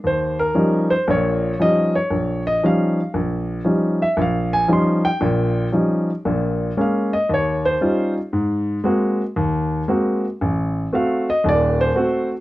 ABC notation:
X:1
M:4/4
L:1/8
Q:"Swing" 1/4=116
K:Ebmix
V:1 name="Grand piano"
c B2 c d2 e d- | d e f2 z3 _f | f a c' g3 z2 | z2 f e d c2 z |
z8 | z2 f e =d c2 z |]
V:2 name="Grand piano" clef=bass
E,,2 [F,G,DE] z [B,,,B,,]2 [F,G,DE] z | B,,,2 [F,G,DE] z B,,,2 [F,G,DE] z | B,,,2 [F,G,DE] z [B,,,B,,]2 [F,G,DE] z | [B,,,B,,]2 [A,B,D] z E,,2 [G,DEF] z |
A,,2 [A,B,C_G] z E,,2 [A,B,CG] z | =A,,,2 [=A,C^F] z [E,,,E,,]2 [A,CF] z |]